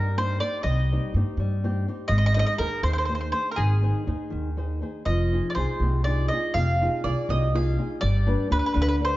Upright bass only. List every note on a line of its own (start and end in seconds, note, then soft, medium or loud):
0.00 0.39 G2 medium
0.64 0.96 C2 loud
1.14 1.22 G2 medium
1.37 1.84 G2 medium
2.09 2.42 G#1 loud
2.59 2.67 D#2 medium
2.83 3.32 D#2 loud
3.58 3.91 G#1 medium
4.07 4.16 D#2 medium
4.32 4.81 D#2 medium
5.06 5.39 F1 loud
5.56 5.65 C2 medium
5.80 6.28 C2 medium
6.55 6.87 F1 loud
7.04 7.12 C2 medium
7.29 7.76 C2 loud
8.03 8.34 G1 medium
8.51 8.59 D2 medium
8.76 9.17 D2 loud